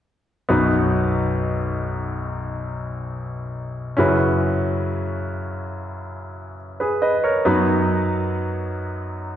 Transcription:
0, 0, Header, 1, 2, 480
1, 0, Start_track
1, 0, Key_signature, 5, "major"
1, 0, Tempo, 869565
1, 274, Time_signature, 4, 2, 24, 8
1, 5168, End_track
2, 0, Start_track
2, 0, Title_t, "Grand piano"
2, 0, Program_c, 0, 0
2, 268, Note_on_c, 0, 59, 48
2, 273, Note_on_c, 0, 35, 44
2, 274, Note_on_c, 0, 63, 39
2, 275, Note_on_c, 0, 42, 46
2, 275, Note_on_c, 0, 66, 40
2, 280, Note_on_c, 0, 71, 52
2, 374, Control_c, 0, 64, 127
2, 2169, Note_off_c, 0, 59, 0
2, 2172, Note_off_c, 0, 35, 0
2, 2172, Note_off_c, 0, 42, 0
2, 2172, Note_off_c, 0, 63, 0
2, 2172, Note_off_c, 0, 66, 0
2, 2175, Note_off_c, 0, 71, 0
2, 2189, Note_on_c, 0, 61, 51
2, 2196, Note_on_c, 0, 64, 43
2, 2197, Note_on_c, 0, 42, 45
2, 2199, Note_on_c, 0, 49, 45
2, 2201, Note_on_c, 0, 66, 45
2, 2202, Control_c, 0, 64, 0
2, 2205, Note_on_c, 0, 71, 53
2, 2282, Control_c, 0, 64, 127
2, 3617, Note_off_c, 0, 71, 0
2, 3754, Note_on_c, 0, 71, 40
2, 3760, Note_on_c, 0, 68, 36
2, 3868, Note_off_c, 0, 71, 0
2, 3871, Note_off_c, 0, 68, 0
2, 3874, Note_on_c, 0, 75, 46
2, 3878, Note_on_c, 0, 71, 40
2, 3988, Note_off_c, 0, 75, 0
2, 3990, Note_off_c, 0, 71, 0
2, 3995, Note_on_c, 0, 73, 41
2, 3997, Note_on_c, 0, 70, 37
2, 4090, Note_off_c, 0, 61, 0
2, 4093, Note_off_c, 0, 42, 0
2, 4093, Note_off_c, 0, 64, 0
2, 4094, Note_off_c, 0, 49, 0
2, 4095, Note_off_c, 0, 66, 0
2, 4113, Note_on_c, 0, 59, 51
2, 4117, Note_on_c, 0, 63, 47
2, 4119, Note_on_c, 0, 42, 48
2, 4120, Control_c, 0, 64, 0
2, 4120, Note_on_c, 0, 54, 53
2, 4120, Note_on_c, 0, 66, 43
2, 4126, Note_on_c, 0, 71, 56
2, 4213, Control_c, 0, 64, 127
2, 4222, Note_off_c, 0, 73, 0
2, 4224, Note_off_c, 0, 70, 0
2, 5168, Note_off_c, 0, 42, 0
2, 5168, Note_off_c, 0, 54, 0
2, 5168, Note_off_c, 0, 59, 0
2, 5168, Note_off_c, 0, 63, 0
2, 5168, Note_off_c, 0, 66, 0
2, 5168, Note_off_c, 0, 71, 0
2, 5168, End_track
0, 0, End_of_file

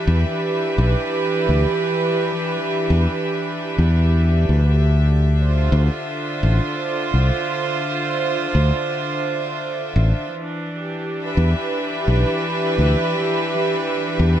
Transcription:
0, 0, Header, 1, 3, 480
1, 0, Start_track
1, 0, Tempo, 705882
1, 1251, Time_signature, 4, 2, 24, 8
1, 9792, End_track
2, 0, Start_track
2, 0, Title_t, "String section"
2, 0, Program_c, 0, 48
2, 0, Note_on_c, 0, 52, 78
2, 0, Note_on_c, 0, 62, 70
2, 0, Note_on_c, 0, 67, 80
2, 0, Note_on_c, 0, 71, 72
2, 0, Note_on_c, 0, 76, 67
2, 3169, Note_off_c, 0, 52, 0
2, 3171, Note_off_c, 0, 71, 0
2, 3172, Note_on_c, 0, 50, 68
2, 3685, Note_on_c, 0, 72, 75
2, 3739, Note_on_c, 0, 65, 76
2, 3908, Note_off_c, 0, 67, 0
2, 7009, Note_on_c, 0, 52, 78
2, 7010, Note_off_c, 0, 76, 0
2, 7011, Note_off_c, 0, 62, 0
2, 7011, Note_off_c, 0, 65, 0
2, 7011, Note_off_c, 0, 72, 0
2, 7012, Note_off_c, 0, 50, 0
2, 7070, Note_on_c, 0, 62, 65
2, 7333, Note_on_c, 0, 67, 73
2, 7639, Note_on_c, 0, 76, 85
2, 7642, Note_on_c, 0, 71, 82
2, 9792, Note_off_c, 0, 52, 0
2, 9792, Note_off_c, 0, 62, 0
2, 9792, Note_off_c, 0, 67, 0
2, 9792, Note_off_c, 0, 71, 0
2, 9792, Note_off_c, 0, 76, 0
2, 9792, End_track
3, 0, Start_track
3, 0, Title_t, "Fingered electric bass"
3, 0, Program_c, 1, 33
3, 51, Note_on_c, 1, 40, 88
3, 158, Note_off_c, 1, 40, 0
3, 531, Note_on_c, 1, 35, 88
3, 639, Note_off_c, 1, 35, 0
3, 1011, Note_on_c, 1, 38, 73
3, 1119, Note_off_c, 1, 38, 0
3, 1972, Note_on_c, 1, 40, 88
3, 2079, Note_off_c, 1, 40, 0
3, 2573, Note_on_c, 1, 40, 84
3, 3029, Note_off_c, 1, 40, 0
3, 3053, Note_on_c, 1, 38, 74
3, 3868, Note_off_c, 1, 38, 0
3, 3890, Note_on_c, 1, 38, 90
3, 3998, Note_off_c, 1, 38, 0
3, 4372, Note_on_c, 1, 33, 88
3, 4479, Note_off_c, 1, 33, 0
3, 4853, Note_on_c, 1, 36, 75
3, 4959, Note_off_c, 1, 36, 0
3, 5812, Note_on_c, 1, 38, 90
3, 5919, Note_off_c, 1, 38, 0
3, 6771, Note_on_c, 1, 33, 89
3, 6879, Note_off_c, 1, 33, 0
3, 7732, Note_on_c, 1, 40, 86
3, 7839, Note_off_c, 1, 40, 0
3, 8212, Note_on_c, 1, 35, 86
3, 8319, Note_off_c, 1, 35, 0
3, 8692, Note_on_c, 1, 38, 74
3, 8799, Note_off_c, 1, 38, 0
3, 9652, Note_on_c, 1, 40, 91
3, 9759, Note_off_c, 1, 40, 0
3, 9792, End_track
0, 0, End_of_file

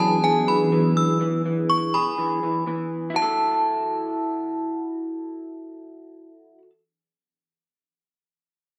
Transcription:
0, 0, Header, 1, 4, 480
1, 0, Start_track
1, 0, Key_signature, 3, "minor"
1, 0, Tempo, 487805
1, 1192, Time_signature, 4, 2, 24, 8
1, 8648, End_track
2, 0, Start_track
2, 0, Title_t, "Synth bell"
2, 0, Program_c, 0, 98
2, 0, Note_on_c, 0, 81, 83
2, 223, Note_off_c, 0, 81, 0
2, 234, Note_on_c, 0, 80, 85
2, 461, Note_off_c, 0, 80, 0
2, 474, Note_on_c, 0, 83, 79
2, 924, Note_off_c, 0, 83, 0
2, 954, Note_on_c, 0, 88, 81
2, 1181, Note_off_c, 0, 88, 0
2, 1669, Note_on_c, 0, 85, 90
2, 1898, Note_off_c, 0, 85, 0
2, 1909, Note_on_c, 0, 83, 71
2, 2591, Note_off_c, 0, 83, 0
2, 3110, Note_on_c, 0, 81, 91
2, 4512, Note_off_c, 0, 81, 0
2, 8648, End_track
3, 0, Start_track
3, 0, Title_t, "Ambient pad"
3, 0, Program_c, 1, 92
3, 0, Note_on_c, 1, 52, 85
3, 0, Note_on_c, 1, 59, 78
3, 0, Note_on_c, 1, 62, 78
3, 0, Note_on_c, 1, 68, 98
3, 1172, Note_off_c, 1, 52, 0
3, 1172, Note_off_c, 1, 59, 0
3, 1172, Note_off_c, 1, 62, 0
3, 1172, Note_off_c, 1, 68, 0
3, 8648, End_track
4, 0, Start_track
4, 0, Title_t, "Clean electric guitar"
4, 0, Program_c, 2, 27
4, 0, Note_on_c, 2, 52, 79
4, 0, Note_on_c, 2, 68, 91
4, 221, Note_off_c, 2, 52, 0
4, 233, Note_on_c, 2, 52, 80
4, 457, Note_off_c, 2, 52, 0
4, 469, Note_on_c, 2, 52, 73
4, 699, Note_off_c, 2, 52, 0
4, 711, Note_on_c, 2, 52, 91
4, 1177, Note_off_c, 2, 52, 0
4, 1188, Note_on_c, 2, 52, 100
4, 1420, Note_off_c, 2, 52, 0
4, 1432, Note_on_c, 2, 52, 75
4, 1434, Note_off_c, 2, 68, 0
4, 1913, Note_on_c, 2, 68, 97
4, 2135, Note_off_c, 2, 52, 0
4, 2147, Note_on_c, 2, 52, 80
4, 2379, Note_off_c, 2, 52, 0
4, 2391, Note_on_c, 2, 52, 73
4, 2618, Note_off_c, 2, 52, 0
4, 2630, Note_on_c, 2, 52, 90
4, 3051, Note_on_c, 2, 64, 83
4, 3090, Note_on_c, 2, 66, 78
4, 3111, Note_off_c, 2, 52, 0
4, 3113, Note_off_c, 2, 68, 0
4, 3169, Note_on_c, 2, 69, 96
4, 6473, Note_off_c, 2, 64, 0
4, 6512, Note_off_c, 2, 66, 0
4, 6591, Note_off_c, 2, 69, 0
4, 8648, End_track
0, 0, End_of_file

